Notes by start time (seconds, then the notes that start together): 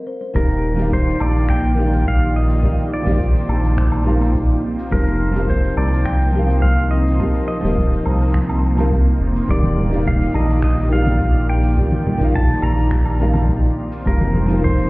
0.07 C5
0.21 C5
0.34 D#1 D#3 A#3 D#4 F4 G4 A#4 D5 F5, kick, shaker
0.50 shaker
0.75 D#3 D#4 G4, open hi-hat
0.79 D5 F5, shaker
0.92 C5, kick, shaker
1.07 open hi-hat, shaker
1.20 A#1 D5, low woodblock
1.36 open hi-hat, shaker
1.49 G5, finger snap, kick, shaker
1.64 open hi-hat, shaker
1.75 D#3 D#4 G4
1.80 D5 F5
1.92 open hi-hat, shaker
2.06 F5, kick, shaker
2.21 shaker
2.36 D#5
2.49 open hi-hat, shaker
2.62 D#3 D#4 G4 C5 D5 F5, kick, shaker
2.79 shaker
2.94 D5
3.03 A#1 D#3 D#4 G4, open hi-hat
3.07 D5 F5, shaker
3.20 kick, shaker
3.35 open hi-hat, shaker
3.49 A#1, low woodblock
3.63 open hi-hat, shaker
3.78 finger snap, kick, shaker
3.92 open hi-hat, low woodblock, shaker
4.04 D#3 D#4 G4 D5 F5
4.21 open hi-hat, low woodblock, shaker
4.35 kick, shaker
4.50 shaker
4.62 A#3 C4 F4 C5
4.78 open hi-hat, shaker
4.91 F1 F3 D#4 G4 A#4 F5, kick, shaker
5.06 shaker
5.32 F3 D#4 G4, open hi-hat
5.36 A#4 F5, shaker
5.49 C5, kick, shaker
5.63 open hi-hat, shaker
5.77 C2 D5, low woodblock
5.93 open hi-hat, shaker
6.06 G5, finger snap, kick, shaker
6.20 open hi-hat, shaker
6.32 F3 D#4 G4
6.37 A#4 F5
6.49 open hi-hat, shaker
6.62 F5, kick, shaker
6.78 shaker
6.91 D#5
7.07 open hi-hat, shaker
7.19 F3 D#4 G4 A#4 F5, kick, shaker
7.34 open hi-hat, shaker
7.48 D#5
7.60 D#1 F3 D#4 G4
7.64 A#4 F5, open hi-hat, shaker
7.78 kick, shaker
7.93 open hi-hat, shaker
8.06 C2, low woodblock
8.21 open hi-hat, shaker
8.34 finger snap, kick, shaker
8.49 open hi-hat, low woodblock, shaker
8.77 F3 D#4 G4 A#4 F5, open hi-hat, low woodblock, shaker
8.92 kick, shaker
9.07 shaker
9.21 F1
9.36 open hi-hat, shaker
9.47 D#1 D#3 D#4 G4 D5 F5, kick, shaker
9.63 high conga, shaker
9.77 low conga
9.89 D#3 D#4 G4, open hi-hat
9.93 D5 F5, shaker
10.06 F5, kick, low conga, shaker
10.20 open hi-hat, shaker
10.34 A#1 D#5, high conga, low woodblock
10.49 open hi-hat, shaker
10.62 D#5, finger snap, kick, shaker
10.77 open hi-hat, shaker
10.88 D#3 D#4 G4
10.93 D5 F5
11.06 open hi-hat, high conga, shaker
11.20 kick, shaker
11.36 shaker
11.49 G5
11.63 open hi-hat, shaker
11.76 D#3 D#4 G4 D5 F5, kick, shaker
11.92 high conga, shaker
12.06 low conga
12.17 A#1 D#3 D#4 G4, open hi-hat, shaker
12.23 D5 F5
12.34 A5, kick, low conga, shaker
12.49 open hi-hat, shaker
12.62 A#1 A#5, high conga, low woodblock
12.77 open hi-hat, shaker
12.91 finger snap, kick, shaker
13.05 open hi-hat, low woodblock, shaker
13.19 D#3 D#4 G4 D5 F5
13.34 open hi-hat, high conga, low woodblock, shaker
13.49 kick, shaker
13.65 shaker
13.76 A#3 C4 D#4 C5
13.91 open hi-hat, shaker
14.05 F1 F3 D#4 G4 A#4 F5, kick, shaker
14.21 high conga, shaker
14.34 low conga
14.46 F3 D#4 G4, open hi-hat, shaker
14.52 A#4 F5
14.63 C5, kick, low conga, shaker
14.77 open hi-hat, shaker